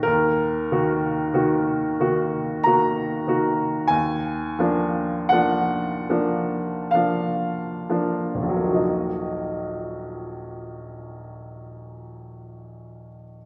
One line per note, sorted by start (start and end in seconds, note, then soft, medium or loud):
0.03 0.68 D#2 soft
0.03 2.65 A#4 medium
0.72 1.30 D#3 soft
0.72 1.30 A#3 soft
0.72 1.31 F#4 soft
1.34 1.96 D#3 soft
1.34 1.96 A#3 soft
1.34 1.96 F#4 soft
2.00 2.62 D#3 soft
2.00 2.62 A#3 soft
2.00 2.62 F#4 soft
2.63 3.24 D#3 soft
2.63 3.24 A#3 soft
2.63 3.24 F#4 soft
2.63 3.89 A#5 medium
3.27 3.86 D#3 soft
3.27 3.87 A#3 soft
3.27 3.87 F#4 soft
3.88 4.56 D#2 soft
3.88 5.29 G#5 medium
4.59 5.27 F3 soft
4.59 5.28 A#3 soft
4.59 5.28 D4 soft
5.29 6.05 F3 soft
5.29 6.06 A#3 soft
5.29 6.06 D4 soft
5.29 6.92 F#5 medium
6.09 6.90 F3 soft
6.09 6.90 A#3 soft
6.09 6.90 D4 soft
6.91 7.86 F3 soft
6.91 7.86 A#3 soft
6.91 7.86 D4 soft
6.91 8.79 F5 soft
7.89 8.76 F3 soft
7.89 8.55 A#3 soft
7.89 8.77 D4 soft
8.34 13.08 D#1 soft
8.42 13.16 A#1 soft
8.49 13.22 F#3 soft
8.56 13.30 A#3 soft
8.64 13.37 D#4 soft
8.71 13.45 F#4 soft
8.71 13.45 D#5 soft